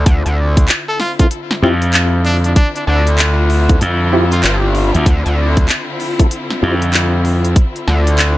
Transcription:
0.06 D2 D3 C4 E4 F4, kick, closed hi-hat
0.26 D2, closed hi-hat
0.57 kick, closed hi-hat
0.68 clap, closed hi-hat
0.88 A4
1.00 F4, snare, open hi-hat
1.19 C4 E4 F4 A4, kick, closed hi-hat
1.31 closed hi-hat
1.51 snare
1.62 F2 C4 E4 F4 G4
1.82 closed hi-hat
1.94 clap, closed hi-hat
2.25 D4, open hi-hat
2.44 D4, closed hi-hat
2.56 D4, kick, closed hi-hat
2.76 D4, closed hi-hat
2.87 D2 D4
3.07 closed hi-hat
3.19 clap, closed hi-hat
3.50 open hi-hat
3.69 C4 E4 F4 A4, kick, closed hi-hat
3.81 F2, closed hi-hat
4.13 C4 E4 F4 G4
4.32 F4, closed hi-hat
4.44 G1 F4, clap, closed hi-hat
4.75 open hi-hat
4.95 D2, closed hi-hat
5.06 D2, kick, closed hi-hat
5.26 D2, closed hi-hat
5.57 kick, closed hi-hat
5.69 clap, closed hi-hat
6.00 open hi-hat
6.19 C4 E4 F4 A4, kick, closed hi-hat
6.31 closed hi-hat
6.50 snare
6.63 F2 C4 E4 F4 G4
6.82 closed hi-hat
6.94 clap, closed hi-hat
7.25 open hi-hat
7.45 closed hi-hat
7.56 kick, closed hi-hat
7.76 closed hi-hat
7.88 D2, snare
8.07 closed hi-hat
8.19 clap, closed hi-hat

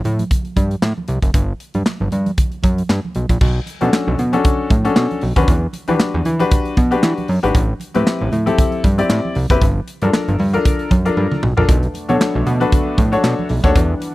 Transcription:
0.04 A2, closed hi-hat, low conga
0.19 closed hi-hat, high conga
0.31 kick, closed hi-hat, low conga
0.45 closed hi-hat
0.56 G2, kick, closed hi-hat, high conga
0.71 closed hi-hat
0.82 A2, snare, clap, muted conga
0.98 high conga
1.08 C2, closed hi-hat, muted conga
1.22 F#1, kick, closed hi-hat, high conga
1.34 G1, kick, closed hi-hat, muted conga, low conga
1.60 closed hi-hat
1.74 G2, closed hi-hat, high conga
1.86 snare, clap, muted conga
2.00 G1, high conga
2.11 G2, closed hi-hat, muted conga, low conga
2.26 closed hi-hat, high conga
2.38 kick, closed hi-hat, muted conga, low conga
2.52 closed hi-hat
2.63 F#2, kick, closed hi-hat, muted conga, high conga
2.78 closed hi-hat
2.89 G2, snare, clap
3.05 high conga
3.15 B1, closed hi-hat
3.29 A#1, kick, closed hi-hat, high conga
3.41 B1, kick, crash, muted conga, low conga
3.66 closed hi-hat, muted conga
3.81 B2 C#4 D4 F#4 A4, closed hi-hat, high conga
3.93 snare, clap, muted conga
4.07 B1, high conga
4.18 B2, closed hi-hat, muted conga, low conga
4.33 C#4 D4 F#4 A4, closed hi-hat, high conga
4.45 kick, closed hi-hat, muted conga, low conga
4.70 A2, kick, closed hi-hat, muted conga, high conga
4.85 C#4 D4 F#4 A4, closed hi-hat
4.96 B2, snare, clap, muted conga
5.11 closed hi-hat, high conga
5.21 B1, open hi-hat
5.36 D#2 C#4 D4 F#4 B4, kick, closed hi-hat, high conga
5.48 E2, kick, closed hi-hat, muted conga, low conga
5.73 closed hi-hat, muted conga
5.88 E3 D4 F#4 G4 B4, closed hi-hat, high conga
6.00 snare, clap, muted conga
6.14 E2, high conga
6.25 E3, closed hi-hat, muted conga, low conga
6.39 D4 F#4 G4 B4, closed hi-hat, high conga
6.51 kick, closed hi-hat, muted conga, low conga
6.65 closed hi-hat
6.77 B2, kick, closed hi-hat, muted conga, high conga
6.91 D4 F#4 G4 B4, closed hi-hat
7.03 E3, snare, clap, muted conga
7.18 closed hi-hat, high conga
7.28 F#2, open hi-hat, muted conga
7.43 G#1 D4 F#4 G4 B4, closed hi-hat, high conga
7.55 A1, kick, closed hi-hat, muted conga, low conga
7.80 closed hi-hat, muted conga
7.94 A2 C4 E4 G4 B4, closed hi-hat, high conga
8.07 snare, clap
8.21 A1, high conga
8.32 A2, closed hi-hat, muted conga, low conga
8.46 C4 E4 G4 A4, closed hi-hat, high conga
8.58 kick, closed hi-hat, low conga
8.72 closed hi-hat
8.84 G2, kick, closed hi-hat, muted conga, high conga
8.98 C4 E4 G4 D5, closed hi-hat
9.10 A2, snare, clap, muted conga
9.25 high conga
9.35 C2, open hi-hat, muted conga
9.50 F#1 C4 E4 G4 B4, kick, closed hi-hat, high conga
9.61 G1, kick, closed hi-hat, low conga
9.88 closed hi-hat
10.02 G2 D4 F4 A4 A#4, closed hi-hat, high conga
10.13 snare, clap, muted conga
10.28 G1, closed hi-hat, high conga
10.39 G2, open hi-hat, muted conga, low conga
10.53 D4 F4 A4 A#4, closed hi-hat, high conga
10.65 kick, closed hi-hat, muted conga, low conga
10.79 closed hi-hat
10.91 F#2, kick, closed hi-hat, muted conga, high conga
11.05 D4 F4 A4 A#4, closed hi-hat
11.17 G2, high tom, muted conga
11.32 mid tom, high conga
11.43 B1, mid tom
11.57 A#1 D4 F4 A4 A#4, floor tom, high conga
11.68 B1 A3 B3 D4, kick, closed hi-hat, muted conga, low conga
11.83 closed hi-hat
11.94 closed hi-hat, muted conga
12.08 B2 D4 F#4 A4 C#5, closed hi-hat, high conga
12.21 snare, clap, muted conga
12.35 B1, high conga
12.46 B2, closed hi-hat, muted conga, low conga
12.60 D4 F#4 A4 B4, closed hi-hat, high conga
12.72 kick, closed hi-hat, muted conga, low conga
12.97 A2, kick, closed hi-hat, muted conga, high conga
13.12 D4 F#4 A4 C#5, closed hi-hat
13.24 B2, snare, clap
13.39 high conga
13.49 B1, open hi-hat
13.64 D#2 D4 F#4 A4 C#5, kick, closed hi-hat, high conga
13.75 E2 E3 G3 D4 F#5, kick, closed hi-hat, muted conga, low conga
14.00 closed hi-hat, muted conga

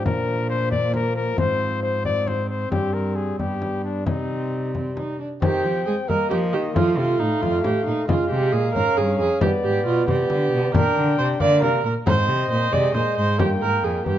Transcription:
Already playing: F3
0.05 A#2 D4 A#4, frame drum
0.50 C5
0.71 F3 A#3 D5, frame drum
0.94 A#4, frame drum
1.16 A#4
1.38 G#2 C4 C5, frame drum
1.83 C5
2.05 C4 D5, frame drum
2.28 C5, frame drum
2.49 C5
2.71 G2 G3 G4, frame drum
2.94 A#4
3.16 G#4
3.38 G2 G3 B3 G4, frame drum
3.62 frame drum
3.84 D4
4.06 C3 G3 C4 D#4, frame drum
4.75 C4, frame drum
4.97 D#4, frame drum
5.20 D4
5.42 D#3 C4 G4 G5, frame drum
5.64 F3
5.86 G#3 G#4
6.08 G3 A#3 A#4 D#5, frame drum
6.29 F3 G4, frame drum
6.53 D#3 G4
6.75 F3 A3 F4 F5, frame drum
6.97 C3 F4
7.19 A2 D#4
7.41 F2 F4, frame drum
7.64 A2 G4, frame drum
7.86 A#2 D#4
8.08 C#3 G#3 F4 F5, frame drum
8.30 C3 G4
8.52 A#2 G#4
8.74 G#2 C#4 A#4, frame drum
8.97 G2 G#4, frame drum
9.19 F2 G#4
9.41 G2 B3 G4 D5, frame drum
9.64 G#2 G4
9.85 B2 F4
10.08 C3 G4 D5, frame drum
10.30 D3, frame drum
10.52 C3
10.74 A#2 D4 A#4 G5, frame drum
10.96 D3
11.18 C3 C5
11.40 D3 A#3 D5 F5, frame drum
11.62 C3 A#4, frame drum
11.85 A#2 A#4
12.06 G#2 C4 C5 D#5, frame drum
12.28 C3
12.50 A#2 C5
12.72 C3 G#3 D5, frame drum
12.94 A#2 C5, frame drum
13.17 G#2 C5
13.39 G2 A#3 G4 G5, frame drum
13.61 G#2 A#4
13.84 F2 G#4
14.05 G2 B3 G4 G5, frame drum

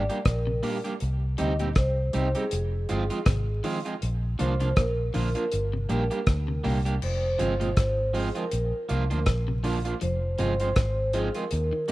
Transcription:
Already playing: D5
0.09 G3 A#3 D4 G4, closed hi-hat
0.25 A#1 A#4, kick, cross-stick, closed hi-hat
0.47 C3
0.63 A#2 G3 A#3 D4 G4, open hi-hat
0.84 G3 A#3 D4 G4, closed hi-hat
1.00 C2, closed hi-hat
1.38 D2 C3 G3 C4 D#4 G4 D#5, closed hi-hat
1.59 A#2 G3 C4 D#4 G4, closed hi-hat
1.75 C2 C5, kick, cross-stick, closed hi-hat
2.13 C2 G3 C4 D#4 G4, closed hi-hat
2.35 G3 C4 D#4 G4 G#4, closed hi-hat
2.51 F1, closed hi-hat
2.89 G1 F3 G#3 C4 F4, closed hi-hat
3.10 F3 G#3 C4 F4, closed hi-hat
3.26 G#1 C3, kick, cross-stick, closed hi-hat
3.64 D#3 F3 G#3 C4 F4, open hi-hat
3.85 F3 G#3 C4 F4, closed hi-hat
4.02 A#1, closed hi-hat
4.39 C2 D3 F3 A#3 D4 F4 C5, closed hi-hat
4.60 C3 F3 A#3 D4 F4, closed hi-hat
4.76 A#1 A#2 A#4, kick, cross-stick, closed hi-hat
5.14 A#1 D3 F3 A#3 D4 F4 A#4, open hi-hat
5.35 F3 A#3 D4 F4, closed hi-hat
5.52 G1, closed hi-hat
5.73 C3
5.89 A#1 A#2 G3 A#3 D4 G4, closed hi-hat
6.11 G3 A#3 D4 G4, closed hi-hat
6.27 D2, kick, cross-stick, closed hi-hat
6.48 C3
6.64 C2 A#2 G3 A#3 D4 G4, open hi-hat
6.85 G3 A#3 D4 G4, closed hi-hat
7.02 F1 C5, crash
7.39 G1 C3 F3 G#3 C4 F4, closed hi-hat
7.60 A#2 F3 G#3 C4 F4 C5, closed hi-hat
7.77 G#1, kick, cross-stick, closed hi-hat
8.14 F3 G#3 C4 F4 G#4, open hi-hat
8.35 F3 G#3 C4 F4 A#4, closed hi-hat
8.51 A#1, closed hi-hat
8.89 C2 F3 A#3 D4 F4, closed hi-hat
9.10 D2 F3 A#3 D4 F4, closed hi-hat
9.26 A#1, kick, cross-stick, closed hi-hat
9.48 C3
9.64 D3 F3 A#3 D4 F4, open hi-hat
9.85 F3 A#3 D4 F4, closed hi-hat
10.01 F1 F3 C5, closed hi-hat
10.38 G1 C3 F3 G#3 C4 F4, closed hi-hat
10.60 F3 G#3 C4 F4 C5, closed hi-hat
10.76 G#1, kick, cross-stick, closed hi-hat
11.13 F3 G#3 C4 F4 G#4, closed hi-hat
11.34 F3 G#3 C4 F4 A#4, closed hi-hat
11.51 D#2, closed hi-hat
11.73 D#3
11.88 G3, closed hi-hat

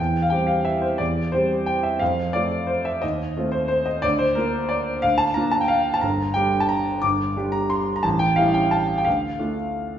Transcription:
Already playing: G5
0.00 E2
0.22 F5
0.30 G3 C4 G4 G5
0.47 F5
0.65 E5
0.81 C5
0.98 E2 D5
1.32 G3 C4 G4 C5
1.66 G5
1.83 E5
1.99 F2 F5
2.33 A3 C4 F4 D5
2.67 C5
2.85 E5
3.02 D#2 D#5
3.37 A3 C4 F4
3.52 C5
3.68 C5
3.86 D#5
4.02 D2 D5
4.19 C5
4.35 A#3 D4 F4 A#4
4.69 D5
5.02 D2 F5
5.18 A5
5.34 A#3 D4 F4 A#5
5.51 A5
5.61 G5
5.68 F5
5.94 A5
6.01 G1 A#5
6.34 G3 D4 G4 G5
6.60 A5
6.69 A#5
7.02 G1 D6
7.37 G3 D4 G4
7.52 A#5
7.70 C6
7.96 A#5
8.03 A1 A5
8.19 G5
8.36 G3 C#4 E4 F5
8.54 G5
8.71 A5
8.98 G5
9.05 D2 F5
9.39 A3 D4 F4

